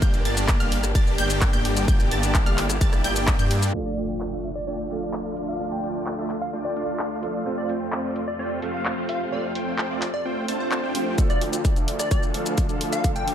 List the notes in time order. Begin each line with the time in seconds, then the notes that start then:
Already playing: A#3
0.02 G1 A#3 D4 G4 D5 G5 G6, kick, closed hi-hat, shaker
0.14 closed hi-hat, shaker
0.25 G1 A#3 D4 G4 D5 A5 A6, open hi-hat
0.37 closed hi-hat, shaker
0.48 kick, clap, closed hi-hat, shaker
0.60 G1 A#3 D4 G4 D5 F5 F6, closed hi-hat, shaker
0.72 open hi-hat
0.83 cross-stick, closed hi-hat, shaker
0.95 G1 A#3 D4 G4 D5 A5 A6, kick, closed hi-hat, shaker
1.07 shaker
1.18 G1 A#3 D4 G4 D5 G5 G6, open hi-hat
1.30 closed hi-hat, shaker
1.41 kick, clap, closed hi-hat, shaker
1.53 G1 A#3 D4 G4 D5 G5 G6, closed hi-hat, shaker
1.65 open hi-hat
1.77 closed hi-hat, shaker
1.88 G1 A#3 D4 E4 G4 D5 G5 G6, kick, closed hi-hat, shaker
2.00 closed hi-hat, shaker
2.11 G1 A#3 D4 G4 D5 A5 A6, open hi-hat
2.23 closed hi-hat, shaker
2.35 kick, clap, closed hi-hat, shaker
2.46 G1 A#3 D4 G4 D5 F5 F6, closed hi-hat, shaker
2.58 clap, open hi-hat
2.70 cross-stick, closed hi-hat, shaker
2.81 G1 A#3 D4 G4 D5 A5 A6, kick, closed hi-hat, shaker
2.93 cross-stick, closed hi-hat, shaker
3.04 G1 A#3 D4 G4 D5 G5 G6, open hi-hat
3.16 closed hi-hat, shaker
3.27 kick, clap, closed hi-hat, shaker
3.39 G2 A#3 D4 G4 D5 G5 G6, closed hi-hat, shaker
3.51 open hi-hat
3.63 closed hi-hat, shaker
3.73 D2 D3 F3 A3 D4 F4 A4 D5 F5, crash, impact
3.86 D5
3.97 A3 D4 F4 D5 G5, open hi-hat
4.20 clap
4.32 A3 D4 F4 D5 E5
4.44 open hi-hat
4.55 D5
4.67 A3 D4 F4 D5 G5
4.90 F3 A3 D4 F4 A4 D5 F5, open hi-hat
5.13 clap
5.25 A3 D4 F4 D5 F5
5.37 open hi-hat
5.48 F5
5.59 F3 A3 D4 F4 A4 D5 F5
5.72 G5
5.83 A3 D4 F4 D5 G5, open hi-hat
6.06 clap
6.18 A3 D4 F4 D5 E5
6.30 clap, open hi-hat
6.42 F5
6.53 A3 D4 F4 D5 G5
6.65 D5
6.76 A3 D4 F4 D5 F5, open hi-hat
6.99 clap
7.11 A3 D4 F4 D5 F5
7.22 F3 A3 D4 A4, open hi-hat
7.45 F2 C3 F3 A3 C4 F4 A4 C5 F5
7.58 D5
7.69 A3 C4 F4 C5 G5, open hi-hat
7.92 clap
8.04 A3 C4 F4 C5 D5
8.16 open hi-hat
8.28 D5
8.39 A3 C4 F4 C5 D5 G5
8.62 F3 A3 C4 F4 A4 C5 F5, open hi-hat
8.74 F5
8.85 clap
8.97 A3 C4 F4 C5 F5
9.09 F5, open hi-hat
9.31 F3 A3 C4 F4 A4 C5 D5 F5
9.55 A3 C4 F4 C5 G5, open hi-hat
9.78 clap
9.90 A3 C4 F4 C5 D5
10.02 clap, open hi-hat
10.14 D5
10.25 A3 C4 F4 C5 G5, swell
10.48 A3 C4 F4 C5 A5, open hi-hat
10.60 C5
10.71 clap
10.83 A3 C4 F4 C5 G5
10.95 F3 A3 C4 G4, open hi-hat
11.17 D2 D3 F3 A3 D4 F4 A4 D5 F5, kick, closed hi-hat, shaker
11.30 D5, closed hi-hat, shaker
11.41 D2 A3 D4 F4 D5 G5, open hi-hat
11.53 closed hi-hat, shaker
11.65 kick, closed hi-hat, shaker
11.76 D2 A3 D4 F4 D5 E5, closed hi-hat, shaker
11.88 open hi-hat
11.99 D5, cross-stick, closed hi-hat, shaker
12.11 D2 A3 D4 F4 D5 G5, kick, closed hi-hat, shaker
12.23 shaker
12.34 D2 F3 A3 D4 F4 A4 D5 F5, open hi-hat
12.46 closed hi-hat, shaker
12.58 kick, closed hi-hat, shaker
12.69 D2 A3 D4 F4 D5 F5, closed hi-hat, shaker
12.81 open hi-hat
12.93 F5, closed hi-hat, shaker
13.03 D2 F3 A3 D4 F4 A4 D5 F5, kick, closed hi-hat, shaker
13.16 G5, closed hi-hat, shaker
13.28 D2 A3 D4 F4 D5 G5, open hi-hat